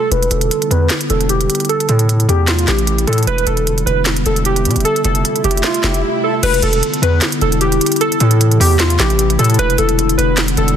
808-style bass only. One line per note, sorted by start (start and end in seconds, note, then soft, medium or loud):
0.11 0.30 E1 loud
0.31 0.50 E1 loud
0.71 0.90 E2 loud
1.10 1.48 E1 loud
1.89 2.27 A2 loud
2.29 2.66 E2 loud
2.68 3.06 A1 loud
3.07 3.26 A2 loud
3.27 3.46 E1 loud
3.47 3.85 E1 loud
3.86 4.24 E1 loud
4.26 4.67 E1 loud
4.65 4.77 B2 loud
4.76 4.85 E1 loud
5.05 5.24 F1 loud
5.44 5.63 F1 loud
5.84 6.04 F1 loud
6.43 6.62 E1 loud
6.63 6.82 E1 loud
7.02 7.21 E2 loud
7.42 7.80 E1 loud
8.21 8.59 A2 loud
8.60 8.98 E2 loud
9.00 9.37 A1 loud
9.39 9.58 A2 loud
9.59 9.78 E1 loud
9.78 10.16 E1 loud
10.18 10.56 E1 loud
10.57 10.77 E1 loud